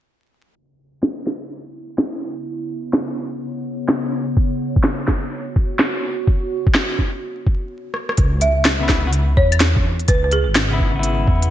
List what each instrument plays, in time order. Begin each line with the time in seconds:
0.55 ambient pad C#3
0.98 ambient pad E4
1.03 snare
1.08 ambient pad B3
1.27 snare
1.98 snare
2.13 ambient pad C#5
2.93 snare
3.89 snare
4.37 kick
4.76 kick
4.84 ambient pad F#4, snare
5.08 kick, snare
5.56 kick
5.79 snare
6.27 kick
6.67 kick
6.75 snare
6.99 kick
7.47 kick
7.94 cross-stick
8.09 cross-stick
8.17 detuned saw bass C#2, kick, closed hi-hat
8.41 marimba E5, closed hi-hat
8.65 snare, closed hi-hat, claves
8.79 clean electric guitar C#3 B3 E4
8.89 kick, snare
9.03 clean electric guitar C#3 B3
9.07 clean electric guitar F#4
9.13 closed hi-hat
9.37 detuned saw bass E2, marimba C#5, kick
9.52 closed hi-hat, claves
9.60 snare, closed hi-hat
9.77 kick
10.00 closed hi-hat
10.08 detuned saw bass C#2, marimba B4, kick, closed hi-hat
10.24 marimba B4
10.32 marimba G#4, closed hi-hat
10.48 detuned saw bass G#1
10.55 snare, closed hi-hat, claves
10.69 clean electric guitar C#3 B3 E4
10.80 kick
10.91 clean electric guitar C#3
10.96 clean electric guitar B3 E4
11.03 closed hi-hat
11.27 detuned saw bass E2, kick
11.42 closed hi-hat